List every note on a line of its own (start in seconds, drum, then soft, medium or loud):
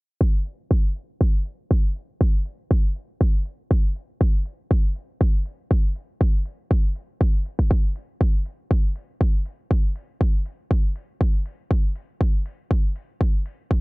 0.21 kick loud
0.46 open hi-hat medium
0.71 kick loud
0.96 open hi-hat medium
1.21 kick loud
1.46 open hi-hat medium
1.71 kick loud
1.96 open hi-hat medium
2.21 kick loud
2.46 open hi-hat loud
2.71 kick loud
2.96 open hi-hat medium
3.21 kick loud
3.34 open hi-hat medium
3.46 open hi-hat medium
3.71 kick loud
3.96 open hi-hat loud
4.21 kick loud
4.46 open hi-hat loud
4.71 kick loud
4.96 open hi-hat loud
5.21 kick loud
5.46 open hi-hat loud
5.71 kick loud
5.96 open hi-hat loud
6.21 kick loud
6.46 open hi-hat loud
6.71 kick loud
6.96 open hi-hat loud
7.21 kick loud
7.34 open hi-hat medium
7.46 open hi-hat loud
7.59 kick medium
7.71 kick loud
7.96 open hi-hat loud
8.21 kick loud
8.46 open hi-hat loud
8.71 kick loud
8.96 open hi-hat medium
9.21 kick loud
9.46 open hi-hat medium
9.71 kick loud
9.96 open hi-hat loud
10.21 kick loud
10.46 open hi-hat medium
10.71 kick loud
10.96 open hi-hat medium
11.21 kick loud
11.34 open hi-hat medium
11.46 open hi-hat medium
11.71 kick loud
11.96 open hi-hat medium
12.21 kick loud
12.46 open hi-hat medium
12.71 kick loud
12.96 open hi-hat medium
13.21 kick loud
13.46 open hi-hat medium
13.71 kick loud